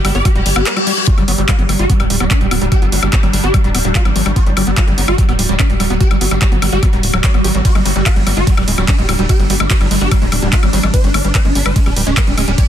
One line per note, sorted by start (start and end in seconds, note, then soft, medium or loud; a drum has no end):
0.00 1.06 G3 medium
0.00 1.09 G4 medium
0.05 0.11 G1 loud
0.05 0.10 G3 loud
0.05 0.12 G4 medium
0.05 open hi-hat loud
0.05 high woodblock medium
0.15 0.22 G1 medium
0.15 0.19 B3 loud
0.15 0.22 D5 loud
0.15 closed hi-hat soft
0.25 0.29 G3 medium
0.25 0.32 G4 medium
0.25 kick loud
0.25 closed hi-hat loud
0.25 reverse cymbal medium
0.25 high woodblock soft
0.35 0.42 D1 medium
0.35 0.41 G3 loud
0.35 0.42 G4 medium
0.35 closed hi-hat soft
0.46 0.52 G1 loud
0.46 0.49 G3 medium
0.46 open hi-hat loud
0.56 0.63 G1 medium
0.56 0.61 B3 medium
0.56 0.63 G4 medium
0.56 closed hi-hat soft
0.56 high woodblock medium
0.66 0.73 B4 loud
0.66 clap loud
0.66 closed hi-hat loud
0.77 0.79 G3 loud
0.77 0.83 G4 medium
0.77 closed hi-hat soft
0.77 high woodblock soft
0.87 0.92 G3 medium
0.87 0.94 G4 medium
0.87 open hi-hat loud
0.97 1.04 G4 medium
0.97 closed hi-hat soft
1.07 12.68 G3 medium
1.07 1.11 G3 medium
1.07 4.38 D4 medium
1.07 1.14 F#4 loud
1.07 kick loud
1.07 closed hi-hat loud
1.18 1.24 G1 medium
1.18 1.25 G3 medium
1.18 1.23 G3 medium
1.18 closed hi-hat soft
1.18 high woodblock soft
1.28 1.35 G1 loud
1.28 1.35 G3 medium
1.28 1.32 B3 loud
1.28 open hi-hat loud
1.38 1.45 G1 medium
1.38 1.42 G3 medium
1.38 1.45 G3 medium
1.38 closed hi-hat soft
1.49 1.54 G3 medium
1.49 1.55 F#4 medium
1.49 kick loud
1.49 clap loud
1.49 closed hi-hat loud
1.49 high woodblock medium
1.59 1.65 G1 medium
1.59 1.66 G3 medium
1.59 1.62 B3 loud
1.59 closed hi-hat soft
1.69 1.76 G1 loud
1.69 1.73 G3 medium
1.69 1.76 G3 medium
1.69 open hi-hat loud
1.69 high woodblock soft
1.79 1.86 G1 medium
1.79 1.85 G3 medium
1.79 1.86 F#4 loud
1.79 closed hi-hat soft
1.90 1.96 G3 medium
1.90 1.93 B3 loud
1.90 kick loud
1.90 closed hi-hat loud
2.00 2.07 D1 medium
2.00 2.07 G3 medium
2.00 2.04 G3 medium
2.00 closed hi-hat soft
2.00 high woodblock medium
2.10 2.17 D1 loud
2.10 2.16 G3 medium
2.10 open hi-hat loud
2.20 2.27 D1 medium
2.20 2.27 G3 medium
2.20 2.24 B3 loud
2.20 closed hi-hat soft
2.20 high woodblock soft
2.31 2.34 G3 medium
2.31 2.38 D4 loud
2.31 kick loud
2.31 clap loud
2.31 closed hi-hat loud
2.41 2.48 D1 medium
2.41 2.48 G3 medium
2.41 2.46 G3 medium
2.41 closed hi-hat soft
2.51 2.58 D1 loud
2.51 2.58 G3 medium
2.51 2.55 B3 loud
2.51 open hi-hat loud
2.51 high woodblock medium
2.62 2.68 D1 medium
2.62 2.68 G3 medium
2.62 2.65 G3 medium
2.62 closed hi-hat soft
2.72 2.77 G3 medium
2.72 2.79 G4 loud
2.72 kick loud
2.72 closed hi-hat loud
2.72 high woodblock soft
2.82 2.89 G1 medium
2.82 2.89 G3 medium
2.82 2.86 B3 loud
2.82 closed hi-hat soft
2.92 2.99 G1 loud
2.92 2.96 G3 medium
2.92 2.99 G3 medium
2.92 open hi-hat loud
3.03 3.09 G1 medium
3.03 3.09 G3 medium
3.03 3.08 G3 medium
3.03 closed hi-hat soft
3.03 high woodblock medium
3.13 3.17 B3 loud
3.13 3.20 G4 medium
3.13 kick loud
3.13 clap loud
3.13 closed hi-hat loud
3.23 3.30 G1 medium
3.23 3.27 G3 medium
3.23 3.30 G3 medium
3.23 closed hi-hat soft
3.23 high woodblock soft
3.33 3.40 G1 loud
3.33 3.39 G3 medium
3.33 3.40 G3 medium
3.33 open hi-hat loud
3.44 3.50 G1 medium
3.44 3.47 B3 loud
3.44 3.51 G4 loud
3.44 closed hi-hat soft
3.54 3.61 G3 medium
3.54 3.58 G3 medium
3.54 kick loud
3.54 closed hi-hat loud
3.54 high woodblock medium
3.64 3.71 D1 medium
3.64 3.70 G3 medium
3.64 3.71 G3 medium
3.64 closed hi-hat soft
3.75 3.81 D1 loud
3.75 3.78 B3 loud
3.75 open hi-hat loud
3.75 high woodblock soft
3.85 3.91 D1 medium
3.85 3.88 G3 medium
3.85 3.92 G3 medium
3.85 closed hi-hat soft
3.95 4.01 G3 medium
3.95 4.02 F#4 loud
3.95 kick loud
3.95 clap loud
3.95 closed hi-hat loud
4.05 4.12 G#1 medium
4.05 4.12 G3 medium
4.05 4.09 B3 loud
4.05 closed hi-hat soft
4.05 high woodblock medium
4.16 4.22 G#1 loud
4.16 4.19 G3 medium
4.16 4.22 G3 medium
4.16 open hi-hat loud
4.26 4.33 G#1 medium
4.26 4.31 G3 medium
4.26 4.33 G3 medium
4.26 closed hi-hat soft
4.26 high woodblock soft
4.36 4.40 B3 loud
4.36 7.67 F#4 medium
4.36 4.43 F#4 loud
4.36 kick loud
4.36 closed hi-hat loud
4.46 4.53 G1 medium
4.46 4.50 G3 medium
4.46 4.53 G3 medium
4.46 closed hi-hat soft
4.57 4.63 G1 loud
4.57 4.62 G3 medium
4.57 4.64 G3 medium
4.57 open hi-hat loud
4.57 high woodblock medium
4.67 4.74 G1 medium
4.67 4.74 G3 medium
4.67 4.71 B3 loud
4.67 closed hi-hat soft
4.77 4.81 G3 medium
4.77 4.84 F#4 medium
4.77 kick loud
4.77 clap loud
4.77 closed hi-hat medium
4.77 high woodblock soft
4.88 4.94 G1 medium
4.88 4.93 G3 medium
4.88 4.94 G3 medium
4.88 closed hi-hat soft
4.98 5.04 G1 loud
4.98 5.05 G3 medium
4.98 5.01 B3 loud
4.98 open hi-hat loud
5.08 5.15 G1 medium
5.08 5.12 G3 medium
5.08 5.15 F#4 loud
5.08 closed hi-hat soft
5.08 high woodblock medium
5.18 5.24 G3 medium
5.18 5.25 G3 medium
5.18 kick loud
5.18 closed hi-hat loud
5.29 5.35 D1 medium
5.29 5.36 G3 medium
5.29 5.32 B3 loud
5.29 closed hi-hat soft
5.29 high woodblock soft
5.39 5.46 D1 loud
5.39 5.42 G3 medium
5.39 open hi-hat loud
5.49 5.56 D1 medium
5.49 5.55 G3 medium
5.49 5.56 G3 medium
5.49 closed hi-hat soft
5.59 5.63 B3 loud
5.59 5.66 D4 loud
5.59 kick loud
5.59 clap loud
5.59 closed hi-hat medium
5.59 high woodblock medium
5.70 5.76 D1 medium
5.70 5.73 G3 medium
5.70 5.77 G3 medium
5.70 closed hi-hat soft
5.80 5.87 D1 loud
5.80 5.85 G3 medium
5.80 5.87 G3 medium
5.80 open hi-hat loud
5.80 high woodblock soft
5.90 5.97 D1 medium
5.90 5.97 G3 medium
5.90 5.94 B3 loud
5.90 closed hi-hat soft
6.01 6.04 G3 medium
6.01 6.07 G4 loud
6.01 kick loud
6.01 closed hi-hat medium
6.11 6.17 G1 medium
6.11 6.16 G3 medium
6.11 6.18 G3 medium
6.11 closed hi-hat soft
6.11 high woodblock medium
6.21 6.28 G1 loud
6.21 6.28 G3 medium
6.21 6.25 B3 loud
6.21 open hi-hat loud
6.31 6.38 G1 medium
6.31 6.35 G3 medium
6.31 6.38 G3 medium
6.31 closed hi-hat soft
6.31 high woodblock soft
6.42 6.47 G3 medium
6.42 6.49 G4 medium
6.42 kick loud
6.42 clap loud
6.42 closed hi-hat medium
6.52 6.59 G1 medium
6.52 6.59 G3 medium
6.52 6.56 B3 loud
6.52 closed hi-hat soft
6.62 6.69 G1 loud
6.62 6.66 G3 medium
6.62 6.69 G3 medium
6.62 open hi-hat loud
6.62 high woodblock medium
6.72 6.79 G1 medium
6.72 6.78 G3 medium
6.72 6.79 G4 loud
6.72 closed hi-hat soft
6.83 6.90 G3 medium
6.83 6.86 B3 loud
6.83 kick loud
6.83 closed hi-hat medium
6.83 high woodblock soft
6.93 7.00 D1 medium
6.93 6.97 G3 medium
6.93 7.00 G3 medium
6.93 closed hi-hat soft
7.03 7.10 D1 loud
7.03 open hi-hat loud
7.14 7.20 D1 medium
7.14 7.17 F#3 loud
7.14 7.20 G3 medium
7.14 high woodblock medium
7.24 7.29 G3 medium
7.24 7.31 D5 loud
7.24 kick loud
7.24 clap loud
7.24 closed hi-hat medium
7.34 7.41 G#1 medium
7.34 7.41 G3 medium
7.34 7.38 B3 loud
7.34 closed hi-hat soft
7.34 high woodblock soft
7.44 7.51 G#1 loud
7.44 7.51 G3 medium
7.44 7.48 G4 medium
7.44 open hi-hat loud
7.55 7.61 G#1 medium
7.55 7.58 G3 medium
7.55 7.62 G3 medium
7.55 closed hi-hat soft
7.65 7.70 G3 medium
7.65 10.96 D4 medium
7.65 7.72 F#4 loud
7.65 kick loud
7.65 closed hi-hat medium
7.65 ride medium
7.75 7.82 G1 medium
7.75 7.82 G3 medium
7.75 7.79 G#3 loud
7.75 closed hi-hat soft
7.75 high woodblock soft
7.85 7.92 G1 loud
7.85 7.92 G3 medium
7.85 7.89 G3 medium
7.85 open hi-hat loud
7.96 8.02 G1 medium
7.96 8.03 G3 medium
7.96 8.01 G3 medium
7.96 closed hi-hat soft
8.06 8.10 G#3 loud
8.06 8.13 F#4 loud
8.06 kick loud
8.06 clap loud
8.06 closed hi-hat medium
8.06 ride medium
8.06 high woodblock medium
8.16 8.23 G1 medium
8.16 8.23 G3 medium
8.16 8.20 G3 medium
8.16 closed hi-hat soft
8.27 8.33 G1 loud
8.27 8.33 G3 medium
8.27 8.32 G3 medium
8.27 open hi-hat loud
8.27 high woodblock soft
8.37 8.43 G1 medium
8.37 8.40 G#3 loud
8.37 8.44 F#4 loud
8.37 closed hi-hat soft
8.47 8.51 G3 medium
8.47 8.54 G3 medium
8.47 kick loud
8.47 closed hi-hat loud
8.47 ride medium
8.57 8.64 D1 medium
8.57 8.63 G3 medium
8.57 8.64 G3 medium
8.57 closed hi-hat soft
8.57 high woodblock medium
8.68 8.74 D1 loud
8.68 8.71 G#3 loud
8.68 open hi-hat loud
8.78 8.85 D1 medium
8.78 8.82 G3 medium
8.78 8.85 G3 medium
8.78 closed hi-hat soft
8.78 high woodblock soft
8.88 8.94 G3 medium
8.88 8.95 D4 loud
8.88 kick loud
8.88 clap loud
8.88 closed hi-hat medium
8.88 ride medium
8.98 9.05 D1 medium
8.98 9.05 G3 medium
8.98 9.02 G#3 loud
8.98 closed hi-hat soft
9.09 9.15 D1 loud
9.09 9.12 G3 medium
9.09 9.16 G3 medium
9.09 open hi-hat loud
9.09 high woodblock medium
9.19 9.26 D1 medium
9.19 9.24 G3 medium
9.19 9.26 G3 medium
9.19 closed hi-hat soft
9.29 9.33 G#3 loud
9.29 9.36 G4 loud
9.29 kick loud
9.29 closed hi-hat medium
9.29 ride medium
9.29 high woodblock soft
9.40 9.46 G1 medium
9.40 9.43 G3 medium
9.40 9.46 G3 medium
9.40 closed hi-hat soft
9.50 9.56 G1 loud
9.50 9.55 G3 medium
9.50 9.57 G3 medium
9.50 open hi-hat loud
9.60 9.67 G1 medium
9.60 9.67 G3 medium
9.60 9.64 G#3 loud
9.60 high woodblock medium
9.70 9.74 G3 medium
9.70 9.77 G4 medium
9.70 kick loud
9.70 clap loud
9.70 closed hi-hat loud
9.70 ride medium
9.81 9.87 G1 medium
9.81 9.86 G3 medium
9.81 9.88 G3 medium
9.81 closed hi-hat soft
9.81 high woodblock soft
9.91 9.98 G1 loud
9.91 9.98 G3 medium
9.91 9.95 G#3 loud
9.91 open hi-hat loud
10.01 10.08 G1 medium
10.01 10.05 G3 medium
10.01 10.08 G4 loud
10.01 closed hi-hat soft
10.11 10.18 G3 medium
10.11 10.17 G3 medium
10.11 kick loud
10.11 closed hi-hat loud
10.11 ride medium
10.11 high woodblock medium
10.22 10.28 D1 medium
10.22 10.29 G3 medium
10.22 10.25 G#3 loud
10.22 closed hi-hat soft
10.32 10.39 D1 loud
10.32 10.36 G3 medium
10.32 open hi-hat loud
10.32 high woodblock soft
10.42 10.49 D1 medium
10.42 10.48 G3 medium
10.42 10.49 G3 medium
10.42 closed hi-hat soft
10.53 10.56 G#3 loud
10.53 10.59 F#4 loud
10.53 kick loud
10.53 clap loud
10.53 closed hi-hat medium
10.53 ride medium
10.63 10.70 G#1 medium
10.63 10.66 G3 medium
10.63 10.70 G3 medium
10.63 closed hi-hat soft
10.63 high woodblock medium
10.73 10.80 G#1 loud
10.73 10.80 G3 medium
10.73 10.79 G3 medium
10.73 open hi-hat loud
10.83 10.90 G#1 medium
10.83 10.90 G3 medium
10.83 10.87 G#3 loud
10.83 closed hi-hat soft
10.83 high woodblock soft
10.94 10.97 G3 medium
10.94 12.68 G4 medium
10.94 11.01 C5 medium
10.94 kick loud
10.94 closed hi-hat loud
10.94 ride medium
11.04 11.11 G1 medium
11.04 11.09 G3 medium
11.04 11.11 D4 medium
11.04 closed hi-hat soft
11.14 11.21 G1 loud
11.14 11.18 G#3 loud
11.14 11.21 D4 medium
11.14 open hi-hat loud
11.14 high woodblock medium
11.25 11.31 G1 medium
11.25 11.28 G3 medium
11.25 11.31 D4 medium
11.25 closed hi-hat soft
11.35 11.40 G3 medium
11.35 11.42 C5 medium
11.35 kick loud
11.35 clap loud
11.35 closed hi-hat loud
11.35 ride medium
11.35 high woodblock soft
11.45 11.52 G1 medium
11.45 11.49 G#3 loud
11.45 11.52 D4 medium
11.45 closed hi-hat soft
11.55 11.62 G1 loud
11.55 11.59 G3 medium
11.55 11.62 D4 medium
11.55 open hi-hat loud
11.66 11.72 G1 medium
11.66 11.71 G3 medium
11.66 11.72 C5 loud
11.66 closed hi-hat soft
11.66 high woodblock medium
11.76 11.80 G#3 loud
11.76 11.83 D4 medium
11.76 kick loud
11.76 closed hi-hat loud
11.76 ride medium
11.86 11.93 D1 medium
11.86 11.90 G3 medium
11.86 11.93 D4 medium
11.86 closed hi-hat soft
11.86 high woodblock soft
11.96 12.03 D1 loud
11.96 12.02 G3 medium
11.96 open hi-hat loud
12.07 12.13 D1 medium
12.07 12.10 G#3 loud
12.07 12.14 D4 medium
12.07 closed hi-hat soft
12.17 12.21 G3 medium
12.17 12.24 B4 loud
12.17 kick loud
12.17 clap loud
12.17 closed hi-hat loud
12.17 ride medium
12.17 high woodblock medium
12.27 12.34 D1 medium
12.27 12.33 G3 medium
12.27 12.34 D4 medium
12.27 closed hi-hat soft
12.38 12.44 D1 loud
12.38 12.41 G#3 loud
12.38 12.44 D4 medium
12.38 open hi-hat loud
12.38 high woodblock soft
12.48 12.54 D1 loud
12.48 12.51 G3 medium
12.48 12.55 D4 medium
12.48 closed hi-hat soft
12.58 12.64 G3 medium
12.58 12.65 D5 medium
12.58 kick loud
12.58 closed hi-hat loud
12.58 ride medium